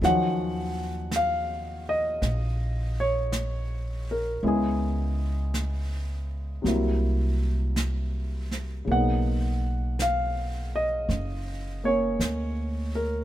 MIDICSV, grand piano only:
0, 0, Header, 1, 2, 480
1, 0, Start_track
1, 0, Tempo, 1107011
1, 8, Time_signature, 4, 2, 24, 8
1, 5741, End_track
2, 0, Start_track
2, 0, Title_t, "Grand piano"
2, 0, Program_c, 0, 0
2, 0, Control_c, 0, 64, 127
2, 10, Note_on_c, 0, 51, 46
2, 13, Note_on_c, 0, 54, 44
2, 14, Control_c, 0, 64, 0
2, 17, Note_on_c, 0, 53, 52
2, 17, Note_on_c, 0, 61, 42
2, 21, Note_on_c, 0, 78, 83
2, 86, Control_c, 0, 64, 127
2, 474, Note_off_c, 0, 78, 0
2, 503, Note_on_c, 0, 77, 77
2, 798, Note_off_c, 0, 77, 0
2, 820, Note_on_c, 0, 75, 81
2, 1301, Note_on_c, 0, 73, 67
2, 1306, Note_off_c, 0, 75, 0
2, 1754, Note_off_c, 0, 73, 0
2, 1783, Note_on_c, 0, 70, 59
2, 1917, Note_off_c, 0, 70, 0
2, 1918, Note_off_c, 0, 51, 0
2, 1920, Note_off_c, 0, 54, 0
2, 1921, Note_on_c, 0, 49, 42
2, 1922, Note_off_c, 0, 53, 0
2, 1922, Note_off_c, 0, 61, 0
2, 1923, Control_c, 0, 64, 0
2, 1924, Note_on_c, 0, 56, 44
2, 1926, Note_on_c, 0, 59, 42
2, 1927, Note_on_c, 0, 64, 46
2, 1941, Note_on_c, 0, 68, 63
2, 1996, Control_c, 0, 64, 127
2, 2870, Note_on_c, 0, 48, 43
2, 2874, Note_off_c, 0, 68, 0
2, 2879, Note_on_c, 0, 54, 42
2, 2881, Note_off_c, 0, 49, 0
2, 2883, Note_off_c, 0, 56, 0
2, 2884, Note_off_c, 0, 59, 0
2, 2885, Note_off_c, 0, 64, 0
2, 2885, Control_c, 0, 64, 0
2, 2886, Note_on_c, 0, 58, 38
2, 2894, Note_on_c, 0, 64, 46
2, 2972, Control_c, 0, 64, 127
2, 3836, Note_on_c, 0, 49, 35
2, 3843, Note_off_c, 0, 48, 0
2, 3843, Note_off_c, 0, 58, 0
2, 3847, Note_off_c, 0, 54, 0
2, 3850, Note_on_c, 0, 58, 36
2, 3853, Control_c, 0, 64, 0
2, 3855, Note_off_c, 0, 64, 0
2, 3866, Note_on_c, 0, 78, 74
2, 3867, Note_on_c, 0, 59, 34
2, 3884, Note_on_c, 0, 63, 43
2, 3930, Control_c, 0, 64, 127
2, 4344, Note_on_c, 0, 77, 73
2, 4354, Note_off_c, 0, 78, 0
2, 4664, Note_on_c, 0, 75, 81
2, 4672, Note_off_c, 0, 77, 0
2, 5127, Note_off_c, 0, 58, 0
2, 5133, Note_on_c, 0, 58, 39
2, 5139, Note_on_c, 0, 73, 65
2, 5147, Note_on_c, 0, 61, 40
2, 5151, Note_off_c, 0, 75, 0
2, 5617, Note_on_c, 0, 70, 61
2, 5629, Note_off_c, 0, 73, 0
2, 5735, Note_off_c, 0, 49, 0
2, 5739, Note_off_c, 0, 70, 0
2, 5741, Note_off_c, 0, 58, 0
2, 5741, Note_off_c, 0, 59, 0
2, 5741, Note_off_c, 0, 61, 0
2, 5741, Note_off_c, 0, 63, 0
2, 5741, End_track
0, 0, End_of_file